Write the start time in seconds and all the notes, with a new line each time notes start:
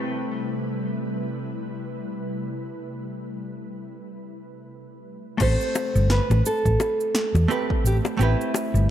Already playing: C3 G3 A3 C4 E4 G4 B4
5.38 A1 A3 C4 G4, kick, crash, shaker
5.42 A4 C5
5.61 shaker
5.75 high bongo, shaker
5.95 G1, shaker
6.10 B4, snare, shaker
6.30 A1, high bongo, shaker
6.46 A4, shaker
6.65 A1, kick, shaker
6.80 high bongo, shaker
7.00 shaker
7.15 snare, shaker
7.34 E2, high bongo, shaker
7.48 A3 C4 G4 B4, shaker
7.70 kick
7.84 A1 G4, shaker
8.05 high bongo, shaker
8.17 A1 A3 C4 G4, shaker
8.22 E4 B4
8.41 shaker
8.54 high bongo, shaker
8.74 G1, shaker